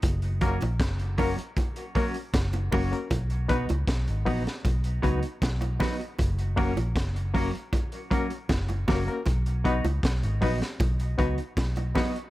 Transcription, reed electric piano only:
X:1
M:4/4
L:1/16
Q:1/4=78
K:B
V:1 name="Reed electric piano"
z2 [A,CFA] z3 [A,CFA] z2 [FA] [A,CFA] z3 [A,CFA] [A,CFA] | z2 [B,DFB] z3 [B,DFB] z3 [B,DFB] z3 [B,DFB] z | z2 [A,CFA] z3 [A,CFA] z2 [FA] [A,CFA] z3 [A,CFA] [A,CFA] | z2 [B,DFB] z3 [B,DFB] z3 [B,DFB] z3 [B,DFB] z |]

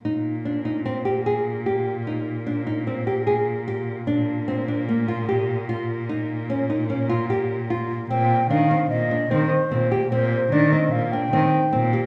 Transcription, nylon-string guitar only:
X:1
M:5/4
L:1/8
Q:1/4=149
K:Bbmix
V:1 name="Nylon-string guitar"
E2 D E C G A2 G2 | E2 D E C G A2 G2 | D2 C D B, F G2 F2 | E2 _D E D F G2 F2 |
C2 D C2 D C2 C G | C2 D C2 D C2 C G |]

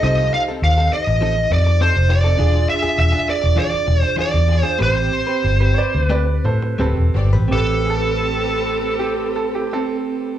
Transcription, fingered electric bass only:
X:1
M:4/4
L:1/16
Q:1/4=96
K:Am
V:1 name="Fingered electric bass" clef=bass
C,,2 z2 _E,,2 z A,,,3 F,,3 F,,,3 | E,,,2 z2 E,,, z2 E,,, z2 E,,, z2 E,,2 z | A,,,2 z2 G,,,2 z D,,3 A,,2 D,,, E,,, G,,, A,,, | A,,,16 |]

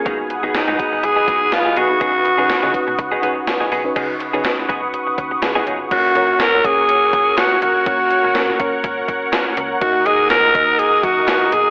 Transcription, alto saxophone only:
X:1
M:4/4
L:1/8
Q:"Swing 16ths" 1/4=123
K:F#
V:1 name="Alto saxophone"
z2 D2 G2 E F- | F6 z2 | z8 | F2 A G3 F F- |
F4 z4 | F G A2 G F2 G |]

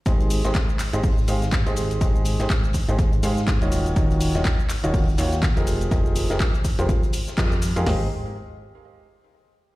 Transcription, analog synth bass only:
X:1
M:4/4
L:1/16
Q:"Swing 16ths" 1/4=123
K:Ab
V:1 name="Analog synth bass" clef=bass
A,,,3 A,,, z3 A,,,3 A,,,3 A,,,3 | A,,,3 A,,, z3 A,,,3 A,,3 E,,,3 | E,,,3 E,,, z3 E,,,3 E,,3 F,,,3 | F,,,3 F,,, z3 F,,, z4 F,,3 F,, |
A,,,2 z12 z2 |]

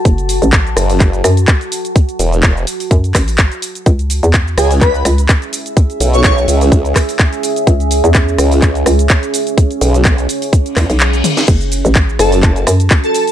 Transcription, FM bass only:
X:1
M:4/4
L:1/16
Q:"Swing 16ths" 1/4=126
K:F#m
V:1 name="FM bass" clef=bass
F,,,3 A,,,3 z4 F,,2 z4 | z8 F,,2 A,,,3 z3 | C,,3 E,,3 z4 C,,2 z4 | z16 |
C,,3 E,,3 z4 C,,2 z4 | z8 z3 B,,,3 z2 | F,,,3 A,,,3 z4 F,,2 z4 |]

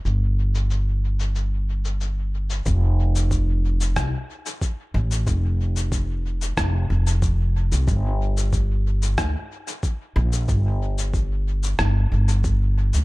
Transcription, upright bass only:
X:1
M:4/4
L:1/16
Q:1/4=92
K:Gm
V:1 name="Upright bass" clef=bass
G,,,16 | F,,,8 C,, z4 z A,,,2 | F,,,8 F,,,2 F,,,4- F,,, C,, | G,,,8 D,, z4 z B,,,2 |
G,,,8 G,,,2 G,,,4- G,,, D,, |]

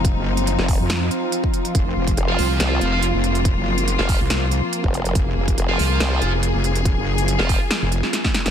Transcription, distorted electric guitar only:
X:1
M:4/4
L:1/16
Q:"Swing 16ths" 1/4=141
K:Fphr
V:1 name="Distorted electric guitar"
z16 | z4 z [Fcf]6 [Fcf] z4 | z4 z [Fcf]2 z8 z | z4 z [Fcf]6 z4 z |
z4 z [Fcf]2 z8 z |]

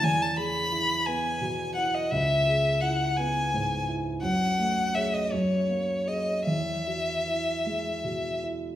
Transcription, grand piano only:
X:1
M:6/8
L:1/8
Q:3/8=56
K:E
V:1 name="Grand piano"
E,, G E B, B,, E | C,, G E B, G,, E | F,, A, [Gc] F,, ^A, [Gc] | E,, F E G, B,, E |]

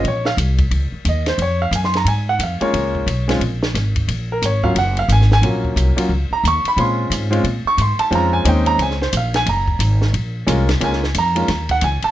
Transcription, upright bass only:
X:1
M:4/4
L:1/8
Q:"Swing" 1/4=178
K:Bbm
V:1 name="Upright bass" clef=bass
B,,,2 C,,2 D,, z E,,2 | F,,2 G,,2 A,,2 F,, z | D,,2 _C,,2 B,,,2 A,,,2 | B,,,2 A,,,2 G,,,2 A,,,2 |
B,,,2 C,, z D,, z E,, z | B,,2 A,,2 B,, z A,, z | F,,2 E,,2 D,,2 B,,,2 | G,,,2 A,,,2 B,,,2 C,,2 |
D,,2 F,,2 E,,2 D,, z |]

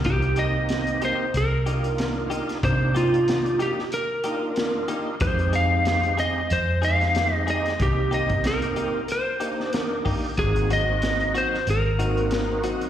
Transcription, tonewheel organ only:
X:1
M:4/4
L:1/8
Q:"Swing 16ths" 1/4=93
K:Cm
V:1 name="Tonewheel organ"
[B,CEG]4 z [B,DEF]3 | [B,DEG]4 z [B,DEF]3 | [A,CEG]4 z [A,CEG]3 | [B,CEG]4 z [B,DEG]3 |
[B,CE_G]4 z [B,CEG]3 |]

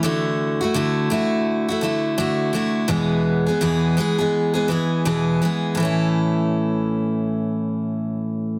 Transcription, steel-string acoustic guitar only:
X:1
M:4/4
L:1/16
Q:"Swing 16ths" 1/4=84
K:A
V:1 name="Steel-string acoustic guitar"
[D,A,EF]3 [A,EF] [D,A,EF]2 [D,A,EF]3 [A,EF] [D,A,EF]2 [D,A,EF]2 [D,A,EF]2 | [E,,B,,E,G,B,G]3 [E,G,B,G] [E,,B,,E,G,B,G]2 [E,G,B,G] [E,G,B,G]2 [E,G,B,G] [E,G,B,G]2 [E,,B,,E,G,B,G]2 [E,G,B,G]2 | [A,,E,A,CE]16 |]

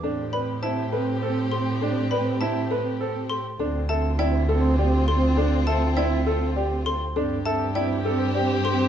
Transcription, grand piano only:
X:1
M:3/4
L:1/16
Q:1/4=101
K:Am
V:1 name="Grand piano"
D z B z E z B z A z3 | D z B z E z B z A z3 | D z A z E z A z G z3 | D z A z E z A z G z3 |
D z A z E z A z G z3 |]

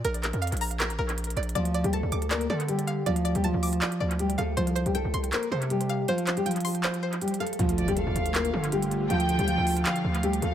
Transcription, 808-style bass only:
X:1
M:4/4
L:1/16
Q:1/4=159
K:Dm
V:1 name="808-style bass" clef=bass
B,,,3 F,,2 B,,,4 A,,, B,,,4 B,,,2 | D,,3 D,,2 D,, D,,4 D,6 | D,,3 D,,2 D,,3 z2 D,,4 D,,2 | C,,3 C,,2 C,, C,,2 z2 C,6 |
z16 | D,,3 D,,2 D,, D,,4 D,6 | D,,3 D,,2 D,,3 z2 D,,4 D,,2 |]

